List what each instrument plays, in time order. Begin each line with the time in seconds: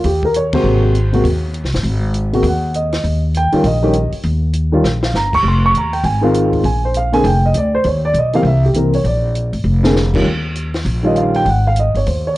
0.04 upright bass D#2, grand piano G4, open hi-hat
0.23 grand piano A#4, kick
0.34 grand piano C#5, closed hi-hat
0.53 grand piano C3 G#3 A#3 F#4 C5, kick, ride
0.64 upright bass G#1
0.95 closed hi-hat
1.13 grand piano C3 G#3 A#3 F#4, open hi-hat
1.24 upright bass D#2, open hi-hat
1.54 closed hi-hat
1.64 upright bass C2, snare
1.72 upright bass G1, snare, open hi-hat
1.83 upright bass G#1, open hi-hat
2.14 closed hi-hat
2.33 grand piano C3 G#3 A#3 F#4, open hi-hat
2.43 upright bass D#2, open hi-hat
2.47 grand piano F#5
2.74 grand piano D#5, closed hi-hat
2.92 snare, open hi-hat
3.04 upright bass D#2, open hi-hat
3.34 grand piano G5, closed hi-hat
3.52 grand piano D#3 G3 C#4 F4, muted upright bass stroke, open hi-hat
3.64 upright bass A#1, grand piano D#5, open hi-hat
3.83 grand piano D#3 G3 C#4 G4
3.93 closed hi-hat
4.12 muted upright bass stroke, open hi-hat
4.23 upright bass D#2, open hi-hat
4.53 closed hi-hat
4.72 grand piano D#3 G3 C#4 F4
4.84 upright bass A#1, snare
5.03 grand piano F5, snare
5.14 upright bass G1, grand piano A#5, snare
5.33 grand piano C#6, kick, crash
5.43 upright bass F1
5.48 grand piano C6
5.66 grand piano C#6
5.73 upright bass D#2, closed hi-hat
5.78 grand piano A#5
5.93 grand piano G5, open hi-hat
6.04 upright bass G#1, grand piano G#5, open hi-hat
6.21 grand piano D#3 G#3 C4 F4 F5
6.34 closed hi-hat
6.53 kick, open hi-hat
6.63 upright bass A#1, grand piano G#5, open hi-hat
6.85 grand piano C5
6.94 grand piano F5, closed hi-hat
7.12 grand piano D3 A#3 C4 G#4 G#5, open hi-hat
7.24 upright bass F1, grand piano G5, open hi-hat
7.46 grand piano D#5
7.54 upright bass D2, grand piano D5, closed hi-hat
7.75 grand piano C5
7.84 upright bass D#2, grand piano C#5, open hi-hat
8.05 grand piano D5
8.14 upright bass B1, closed hi-hat
8.18 grand piano D#5
8.33 grand piano E3 A#3 C4 G4 F5, open hi-hat
8.43 upright bass C2, grand piano E5, open hi-hat
8.65 grand piano G4
8.74 upright bass C2, grand piano E3 A#3 C4 A#4, closed hi-hat
8.93 grand piano C#5, open hi-hat
9.04 upright bass A#1, grand piano D5, open hi-hat
9.35 closed hi-hat
9.53 upright bass G#1, open hi-hat
9.64 upright bass F1
9.83 grand piano D3 A#3 C4 G#4, snare
9.96 snare
10.14 grand piano D#3 G3 C#4 F4, kick, crash
10.25 upright bass D#2
10.55 closed hi-hat
10.74 snare, open hi-hat
10.85 upright bass A#1, open hi-hat
11.03 grand piano D#3 G3 C#4 F4 D#5
11.16 grand piano F5, closed hi-hat
11.34 grand piano G5, open hi-hat
11.45 upright bass G#1, grand piano F#5, open hi-hat
11.67 grand piano F5
11.76 grand piano D#5, closed hi-hat
11.94 upright bass G1, grand piano C#5, open hi-hat
12.06 upright bass D#2, grand piano C5, open hi-hat
12.27 grand piano C#5
12.34 grand piano D5